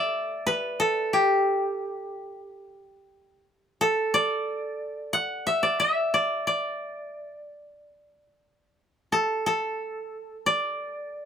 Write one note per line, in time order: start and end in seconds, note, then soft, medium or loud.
0.00 0.71 A4 medium
0.00 0.32 B4 loud
0.00 1.55 D5 loud
0.00 1.38 E5 loud
0.47 2.24 B4 loud
0.80 2.70 A4 loud
1.13 3.42 G4 medium
3.81 5.71 A4 loud
4.14 5.62 D5 loud
5.13 6.52 F#5 loud
5.47 5.79 E5 loud
5.63 6.13 D5 medium
5.80 7.29 E5 loud
6.14 6.47 D5 loud
6.47 8.76 D5 medium
9.12 9.46 A4 medium
9.46 11.25 A4 medium
10.46 11.25 D5 loud